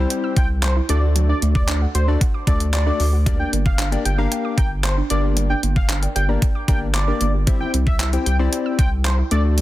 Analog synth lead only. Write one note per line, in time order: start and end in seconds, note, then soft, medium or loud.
0.37 0.48 G5 medium
0.64 0.75 C5 medium
0.90 1.01 D5 loud
1.29 1.40 D5 medium
1.55 1.78 D5 medium
1.95 2.06 C5 medium
2.47 2.59 D5 medium
2.74 3.11 D5 loud
3.39 3.51 G5 medium
3.66 3.89 F5 medium
4.05 4.17 G5 medium
4.58 4.69 G5 medium
4.84 4.95 C5 medium
5.10 5.22 D5 medium
5.50 5.61 G5 medium
5.76 5.99 F5 medium
6.16 6.27 G5 medium
6.68 6.80 G5 medium
6.94 7.32 D5 loud
7.60 7.72 G5 medium
7.86 8.09 E5 medium
8.26 8.37 G5 medium
8.79 8.90 G5 medium
9.05 9.17 C5 medium
9.31 9.43 D5 loud